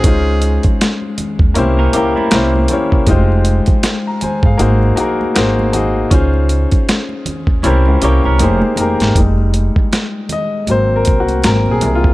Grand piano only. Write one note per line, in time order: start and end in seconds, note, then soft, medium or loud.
0.04 1.48 G#3 medium
0.04 1.48 C#4 medium
0.04 1.49 D#4 medium
0.04 1.49 F4 medium
0.08 1.50 C5 medium
1.54 1.91 A#3 medium
1.54 1.92 C#4 medium
1.54 1.92 E4 medium
1.54 1.93 G4 medium
1.54 1.93 C5 loud
1.93 2.30 A#3 medium
1.93 2.31 C#4 medium
1.93 2.32 E4 medium
1.93 2.33 G4 medium
1.93 2.33 A#4 medium
2.31 2.67 A#3 medium
2.31 2.68 C#4 medium
2.31 2.69 E4 medium
2.31 2.69 G4 medium
2.31 2.69 C5 loud
2.69 3.05 A#3 medium
2.69 3.06 C#4 medium
2.69 3.07 E4 medium
2.69 3.07 G4 medium
2.73 3.08 C#5 medium
3.07 4.52 G#3 medium
3.07 4.52 D#4 medium
3.07 4.53 F4 medium
3.07 3.47 G4 medium
3.07 3.47 C5 loud
4.07 4.22 A#5 medium
4.22 4.44 C5 medium
4.22 4.44 G#5 medium
4.46 4.59 G#4 medium
4.46 4.81 F5 medium
4.57 4.94 A#3 medium
4.57 4.95 D#4 medium
4.57 4.96 F#4 medium
4.57 4.96 G#4 medium
4.62 4.97 C5 loud
4.96 5.33 A#3 medium
4.96 5.34 D#4 medium
4.96 5.35 F#4 medium
4.96 5.36 G#4 medium
4.96 5.37 A#4 medium
5.35 5.71 A#3 medium
5.35 5.72 D#4 medium
5.35 5.72 F#4 medium
5.35 5.73 G#4 medium
5.35 5.73 C5 loud
5.73 6.09 A#3 medium
5.73 6.10 D#4 medium
5.73 6.10 F#4 medium
5.73 6.11 G#4 medium
5.73 6.11 D#5 medium
6.10 7.55 C#4 medium
6.10 7.55 D#4 medium
6.10 7.56 F4 medium
6.10 7.57 G#4 medium
6.10 7.57 C5 medium
7.63 7.99 C#4 medium
7.63 8.00 E4 medium
7.63 8.00 G4 medium
7.63 8.01 A#4 medium
7.63 8.01 C5 medium
8.01 8.39 C#4 medium
8.01 8.40 E4 medium
8.01 8.39 G4 medium
8.01 8.41 A#4 medium
8.01 8.41 C#5 medium
8.39 8.75 A#3 medium
8.39 8.76 D#4 medium
8.39 8.76 G4 medium
8.39 8.77 G#4 medium
8.43 8.77 C5 loud
8.77 9.13 A#3 medium
8.77 9.14 D#4 medium
8.77 9.14 G4 medium
8.77 9.15 G#4 medium
8.77 9.15 A#4 medium
9.17 9.70 G3 medium
9.17 9.70 G#3 soft
9.17 9.70 D#4 medium
10.32 10.70 D#5 medium
10.69 11.22 F#3 medium
10.69 11.22 A#3 soft
10.69 11.22 C4 medium
10.69 10.95 C5 medium
10.96 11.20 A#4 medium
11.20 11.45 F#4 medium
11.45 12.14 F#3 soft
11.45 12.14 A#3 soft
11.45 12.14 C4 medium
11.45 11.71 A#4 medium
11.71 11.94 G#4 medium
11.95 12.14 F4 medium